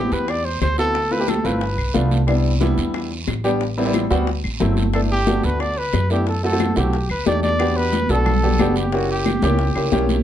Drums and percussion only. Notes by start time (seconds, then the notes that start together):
0.12 high bongo, high conga, short guiro
0.28 high bongo, high conga, long guiro, claves
0.45 high bongo, high conga
0.62 high bongo, low bongo, high conga, short guiro, claves
0.78 high conga, short guiro
0.95 high bongo, high conga, long guiro
1.12 high bongo, high conga
1.28 high bongo, high conga, short guiro, claves
1.45 high bongo, high conga, short guiro
1.61 high bongo, high conga, long guiro
1.78 high bongo, high conga, claves
1.94 high bongo, low bongo, high conga, short guiro
2.11 high conga, short guiro
2.28 high bongo, high conga, long guiro, claves
2.44 high bongo, high conga
2.61 high bongo, high conga, short guiro
2.78 high bongo, high conga, short guiro
2.94 high bongo, high conga, long guiro, claves
3.11 high bongo, high conga
3.28 high bongo, low bongo, high conga, short guiro, claves
3.44 high conga, short guiro
3.61 high bongo, high conga, long guiro
3.77 high bongo, high conga
3.94 high bongo, high conga, short guiro, claves
4.11 high bongo, high conga, short guiro
4.27 high bongo, high conga, long guiro
4.44 high bongo, high conga, claves
4.60 high bongo, low bongo, high conga, short guiro
4.77 high conga, short guiro
4.93 high bongo, high conga, long guiro, claves
5.10 high bongo, high conga
5.27 high bongo, high conga, short guiro
5.43 high bongo, high conga, short guiro
5.60 high bongo, high conga, long guiro, claves
5.77 high bongo, high conga
5.93 high bongo, low bongo, high conga, short guiro, claves
6.10 high conga, short guiro
6.27 high bongo, high conga, long guiro
6.43 high bongo, high conga
6.60 high bongo, high conga, short guiro, claves
6.76 high bongo, high conga, short guiro
6.93 high bongo, high conga, long guiro
7.10 high bongo, high conga, claves
7.26 high bongo, low bongo, high conga, short guiro
7.43 high conga, short guiro
7.59 high bongo, high conga, long guiro, claves
7.76 high conga
7.93 high bongo, high conga, short guiro
8.09 high bongo, high conga, short guiro
8.26 high bongo, high conga, low conga, long guiro, claves
8.43 high bongo, high conga, low conga
8.59 high bongo, low bongo, high conga, short guiro, claves
8.76 high bongo, short guiro
8.92 high bongo, high conga, long guiro
9.09 high conga
9.26 high bongo, high conga, short guiro, claves
9.42 high bongo, high conga, short guiro
9.59 high bongo, high conga, long guiro
9.75 high bongo, high conga, claves
9.92 high bongo, low bongo, high conga, short guiro
10.09 high bongo, high conga, short guiro